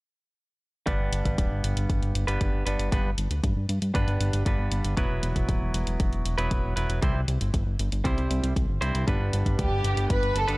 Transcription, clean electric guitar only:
0.86 2.25 G2 medium
0.86 2.25 G3 medium
0.86 2.25 B3 medium
0.86 2.25 D4 medium
0.86 2.25 B4 medium
2.27 2.63 G2 medium
2.27 2.63 G3 medium
2.27 2.63 B3 medium
2.27 2.63 D4 medium
2.27 2.63 B4 medium
2.66 2.89 G2 medium
2.66 2.89 G3 medium
2.66 2.89 B3 medium
2.66 2.89 D4 medium
2.66 2.89 B4 medium
2.91 3.10 G2 medium
2.91 3.10 G3 medium
2.91 3.10 B3 medium
2.91 3.10 D4 medium
2.91 3.10 B4 medium
3.94 4.43 G2 medium
3.94 4.43 G3 medium
3.94 4.43 B3 medium
3.94 4.43 D4 medium
3.94 4.43 B4 medium
4.45 4.94 G2 medium
4.45 4.94 G3 medium
4.45 4.94 B3 medium
4.45 4.94 D4 medium
4.45 4.94 B4 medium
4.97 6.35 F#3 medium
4.97 6.35 B3 medium
4.97 6.35 E4 medium
4.97 6.35 B4 medium
6.38 6.74 F#3 medium
6.38 6.74 B3 medium
6.38 6.74 E4 medium
6.38 6.74 B4 medium
6.76 6.99 F#3 medium
6.76 6.99 B3 medium
6.76 6.99 E4 medium
6.76 6.99 B4 medium
7.02 7.20 C3 medium
7.02 7.20 G3 medium
7.02 7.20 C4 medium
7.02 7.20 E4 medium
7.02 7.20 C5 medium
8.04 8.53 C3 medium
8.04 8.53 G3 medium
8.04 8.53 C4 medium
8.04 8.53 E4 medium
8.04 8.53 C5 medium
8.81 9.04 G2 medium
8.81 9.04 G3 medium
8.81 9.04 C4 medium
8.81 9.04 E4 medium
8.81 9.04 C5 medium
9.07 10.45 G2 medium
9.07 10.45 G3 medium
9.07 10.45 B3 medium
9.07 10.45 D4 medium
9.07 10.45 B4 medium
10.48 10.57 G2 medium
10.48 10.57 G3 medium
10.48 10.57 B3 medium
10.48 10.57 D4 medium
10.48 10.57 B4 medium

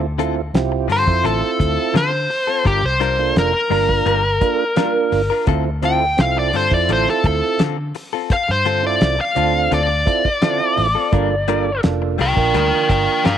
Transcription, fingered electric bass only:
0.00 0.50 D2 medium
0.54 0.86 C2 medium
0.89 1.05 G2 medium
1.08 1.23 F2 medium
1.25 1.41 A1 loud
1.60 1.76 D2 medium
1.94 2.27 D3 medium
2.66 2.82 G1 loud
2.83 3.32 C2 medium
3.36 3.52 F1 medium
3.70 4.03 G1 medium
4.06 4.38 G1 loud
5.12 5.29 G1 medium
5.48 6.14 D2 medium
6.18 6.50 C2 medium
6.53 6.70 G2 medium
6.72 6.87 F2 medium
6.89 7.05 A1 medium
7.24 7.41 D2 medium
7.60 7.92 D3 medium
8.49 8.97 G2 medium
9.01 9.17 C2 medium
9.36 9.68 D2 medium
9.72 10.04 D2 loud
10.78 10.94 A1 medium
11.13 11.79 G1 medium
11.84 12.16 F1 medium
12.19 12.35 C2 medium
12.37 12.53 A#1 medium
12.54 12.71 D2 loud
12.90 13.06 G1 medium
13.25 13.38 G2 medium

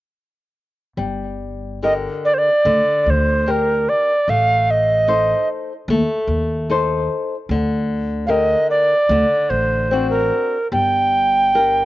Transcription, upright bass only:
0.97 2.06 G1 medium
2.65 2.78 D2 medium
3.06 3.85 D2 medium
4.28 5.32 A1 medium
5.88 6.01 D#2 medium
6.28 7.06 D#2 medium
7.49 8.53 D2 medium
9.09 9.22 D2 medium
9.50 10.29 A1 medium
10.72 11.82 G1 medium

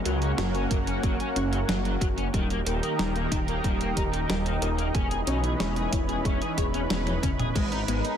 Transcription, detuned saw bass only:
0.06 0.34 C#2 medium
0.39 0.66 F#1 medium
0.71 0.99 F#1 medium
1.03 1.17 F#1 medium
1.36 1.64 F#1 loud
1.69 1.97 F#1 medium
2.01 2.29 F#1 medium
2.34 2.62 D#1 loud
2.66 2.80 D#1 loud
2.99 3.27 D#1 medium
3.32 3.60 D#1 loud
3.64 3.92 D#1 medium
3.97 4.25 D#1 medium
4.29 4.57 D#1 loud
4.62 4.90 D#1 medium
4.95 5.23 E1 medium
5.27 5.55 B1 medium
5.60 5.88 E1 medium
5.92 6.20 E1 medium
6.25 6.39 E1 medium
6.58 6.86 E1 medium
6.90 7.18 E1 medium
7.23 7.51 E1 medium
7.55 7.83 G#1 loud
7.88 8.02 G#1 loud

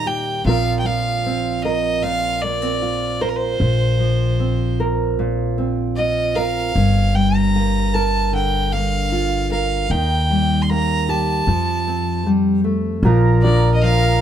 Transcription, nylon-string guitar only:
0.00 0.41 A#2 medium
0.00 0.41 D#3 medium
0.00 0.41 G3 soft
0.00 0.46 A#3 soft
0.00 0.41 D#4 soft
0.06 0.46 G4 medium
0.45 2.03 A#2 medium
0.45 0.86 F3 medium
0.45 1.26 C4 soft
0.45 2.81 F4 soft
0.45 1.65 A#4 medium
0.86 3.99 F3 soft
1.26 2.43 C4 soft
1.65 3.21 A#4 medium
2.04 3.56 A#2 medium
2.43 2.62 A#3 soft
2.62 3.61 C4 soft
2.82 5.98 F4 soft
3.21 4.43 A#4 medium
3.60 5.18 A#2 medium
3.99 7.15 F3 soft
4.40 5.57 C4 soft
4.80 6.35 A#4 medium
5.19 6.72 A#2 medium
5.58 6.71 C4 soft
5.98 6.72 F4 medium
6.36 7.94 A#4 medium
6.75 9.90 G2 medium
7.15 9.86 G3 soft
7.56 8.72 A#3 soft
7.95 9.50 A#4 medium
8.33 9.86 D3 medium
8.74 10.69 A#3 soft
9.12 9.86 F4 medium
9.52 9.86 A#4 medium
9.91 11.43 D#3 medium
10.30 11.43 G3 soft
10.71 11.48 A#3 soft
11.09 11.48 G4 medium
11.48 12.26 F3 medium
11.87 13.00 C4 soft
12.26 12.64 G3 medium
12.64 13.04 A3 soft
13.05 14.21 A#2 medium
13.05 14.21 F4 medium
13.44 14.21 D4 medium
13.83 14.21 F3 medium

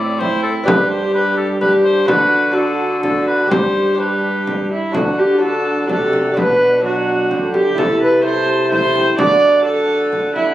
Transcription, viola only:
0.00 0.16 E4 medium
0.20 0.69 E4 medium
0.67 1.61 G4 medium
1.62 2.10 G4 medium
2.09 2.55 F#4 medium
2.56 3.02 F#4 medium
3.04 3.53 F#4 medium
3.52 3.99 G4 medium
4.00 4.70 G4 medium
4.71 4.96 E4 medium
4.94 5.20 F#4 medium
5.19 5.42 G4 medium
5.42 5.89 A4 medium
5.90 6.36 A4 medium
6.38 6.84 B4 medium
6.84 7.53 F#4 medium
7.55 7.80 G4 medium
7.78 8.01 A4 medium
8.02 8.23 B4 medium
8.24 8.71 C5 medium
8.71 9.17 C5 medium
9.18 9.64 D5 medium
9.65 10.34 A4 medium
10.36 10.54 E4 medium

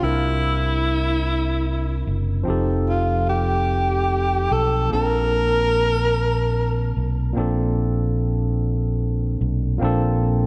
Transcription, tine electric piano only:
0.00 2.41 C3 medium
0.00 2.42 C4 medium
0.00 2.42 D4 medium
0.00 2.43 E4 medium
0.05 2.44 A#4 medium
2.43 4.86 F3 medium
2.43 4.86 C4 medium
2.43 4.87 D#4 medium
2.48 4.88 G4 medium
2.48 4.89 A4 medium
4.89 7.31 A#2 medium
4.89 7.31 A#3 medium
4.89 7.32 C4 medium
4.93 7.33 D4 medium
4.93 7.34 A5 medium
7.33 9.75 A#2 medium
7.33 9.76 A#3 medium
7.33 9.77 C4 medium
7.38 9.78 D4 medium
7.38 9.79 A4 medium
9.78 10.47 A#2 medium
9.78 10.47 A#3 medium
9.78 10.47 C4 medium
9.83 10.47 D4 medium
9.83 10.47 A4 medium

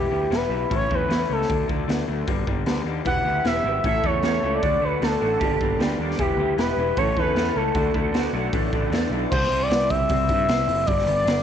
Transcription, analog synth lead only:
0.00 0.36 G4 medium
0.35 0.72 B4 medium
0.75 0.96 C#5 loud
0.94 1.31 B4 loud
1.32 1.68 A4 medium
3.07 3.48 F#5 loud
3.46 3.85 E5 loud
3.87 4.07 E5 loud
4.05 4.24 C#5 loud
4.25 4.56 C#5 medium
4.54 4.86 D5 loud
4.84 5.05 B4 medium
5.04 5.81 A4 medium
6.19 6.56 G4 medium
6.59 6.99 B4 loud
6.98 7.17 C#5 loud
7.18 7.58 B4 loud
7.56 7.95 A4 medium
9.31 9.64 C5 loud
9.62 9.91 D5 loud
9.90 10.88 E5 loud
10.86 11.15 D5 loud
11.15 11.43 D5 medium

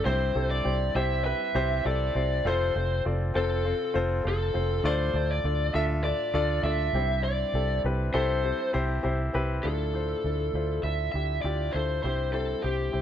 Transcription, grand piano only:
0.05 0.92 G2 medium
0.05 0.29 C4 loud
0.05 0.29 E4 medium
0.05 0.29 G4 medium
0.05 0.29 C5 loud
0.35 0.58 C4 medium
0.35 0.59 E4 medium
0.35 0.59 G4 medium
0.35 0.59 A4 medium
0.64 0.88 C4 medium
0.64 0.88 E4 medium
0.64 0.88 G4 medium
0.64 0.89 C5 medium
0.95 1.18 C4 medium
0.95 1.19 E4 medium
0.95 1.19 G4 medium
0.95 1.19 C5 medium
1.24 1.48 C4 medium
1.24 1.48 E4 medium
1.24 1.49 G4 medium
1.24 1.49 B4 medium
1.54 1.78 C4 medium
1.54 1.78 E4 medium
1.54 1.79 G4 medium
1.54 1.79 C5 loud
1.85 2.08 C4 medium
1.85 2.08 E4 medium
1.85 2.09 G4 medium
1.85 2.09 A4 medium
2.14 2.38 C4 medium
2.14 2.39 E4 medium
2.14 2.39 G4 medium
2.14 2.39 C5 medium
2.45 3.31 C3 medium
2.45 2.68 C4 medium
2.45 2.69 F4 medium
2.45 2.69 A4 medium
2.45 2.69 C5 loud
2.75 2.98 C4 medium
2.75 2.99 F4 medium
2.75 2.99 A4 medium
2.75 2.99 C5 medium
3.05 3.28 C4 medium
3.05 3.29 F4 medium
3.05 3.29 A4 medium
3.05 3.29 D5 medium
3.34 3.58 C4 loud
3.34 3.58 F4 medium
3.34 3.58 A4 medium
3.34 3.59 C5 medium
3.65 3.88 C4 medium
3.65 3.88 F4 medium
3.65 3.89 A4 medium
3.65 3.89 C5 medium
3.94 4.18 C4 medium
3.94 4.18 F4 medium
3.94 4.18 A4 medium
3.94 4.18 C5 loud
4.24 4.48 C4 medium
4.24 4.48 F4 medium
4.24 4.48 A4 medium
4.24 4.48 C5 medium
4.53 4.77 C4 medium
4.53 4.78 F4 medium
4.53 4.78 A4 medium
4.53 4.78 C5 medium
4.84 5.71 A2 medium
4.84 5.08 D4 loud
4.84 5.08 F4 medium
4.84 5.08 A4 medium
4.84 5.08 D5 loud
5.14 5.38 D4 medium
5.14 5.38 F4 medium
5.14 5.38 A4 medium
5.14 5.39 D5 medium
5.44 5.68 D4 medium
5.44 5.68 F4 medium
5.44 5.68 A4 medium
5.44 5.68 D5 medium
5.74 5.98 D4 medium
5.74 5.98 F4 medium
5.74 5.98 A4 medium
5.74 5.98 E5 loud
6.04 6.27 D4 medium
6.04 6.28 F4 medium
6.04 6.28 A4 medium
6.04 6.28 D5 medium
6.34 6.57 D4 medium
6.34 6.57 F4 medium
6.34 6.58 A4 medium
6.34 6.58 D5 loud
6.64 6.88 D4 medium
6.64 6.88 F4 medium
6.64 6.88 A4 medium
6.64 6.88 D5 medium
6.94 7.81 G2 medium
6.94 7.42 C4 medium
6.94 7.43 E4 medium
6.94 7.43 G4 medium
6.94 7.43 C5 medium
7.54 7.77 C4 medium
7.54 7.78 E4 medium
7.54 7.78 G4 medium
7.54 7.78 A4 medium
7.85 8.08 C4 medium
7.85 8.08 E4 medium
7.85 8.08 G4 medium
7.85 8.08 B4 medium
8.13 8.37 C4 medium
8.13 8.37 E4 medium
8.13 8.37 G4 medium
8.13 8.38 A4 loud
8.43 8.67 C4 medium
8.43 8.67 E4 medium
8.43 8.68 G4 medium
8.43 8.68 C5 medium
8.73 8.97 C4 medium
8.73 8.97 E4 medium
8.73 8.97 G4 medium
8.73 8.98 C5 loud
9.03 9.27 C4 medium
9.03 9.27 E4 medium
9.03 9.27 G4 medium
9.03 9.28 C5 medium
9.33 9.57 C4 medium
9.33 9.58 E4 medium
9.33 9.58 G4 medium
9.33 9.58 B4 medium
9.64 10.50 A2 soft
9.64 9.87 D4 medium
9.64 9.88 E4 medium
9.64 9.88 F4 medium
9.64 9.88 A4 medium
9.94 10.17 D4 medium
9.94 10.18 E4 medium
9.94 10.18 F4 medium
9.94 10.18 C5 medium
10.24 10.48 D4 medium
10.24 10.48 E4 soft
10.24 10.48 F4 soft
10.24 10.48 A4 medium
10.54 10.78 D4 medium
10.54 10.78 E4 medium
10.54 10.78 F4 medium
10.54 10.78 C5 medium
10.84 11.08 D4 soft
10.84 11.08 E4 medium
10.84 11.08 F4 soft
10.84 11.08 A4 medium
11.14 11.37 D4 medium
11.14 11.38 E4 medium
11.14 11.38 F4 soft
11.14 11.38 G4 medium
11.44 11.67 D4 medium
11.44 11.68 E4 medium
11.44 11.68 F4 medium
11.44 11.68 G4 medium
11.74 11.98 D4 medium
11.74 11.98 E4 medium
11.74 11.98 F4 medium
11.74 11.98 A4 medium
12.04 12.91 G2 medium
12.04 12.28 C4 medium
12.04 12.28 E4 medium
12.04 12.28 G4 medium
12.04 12.28 C5 medium
12.33 12.57 C4 medium
12.33 12.57 E4 medium
12.33 12.57 G4 medium
12.33 12.58 C5 medium
12.63 12.87 C4 medium
12.63 12.87 E4 soft
12.63 12.88 G4 medium
12.63 12.88 C5 medium
12.92 13.02 C4 medium
12.92 13.02 E4 medium
12.92 13.02 G4 soft
12.92 13.02 C5 medium

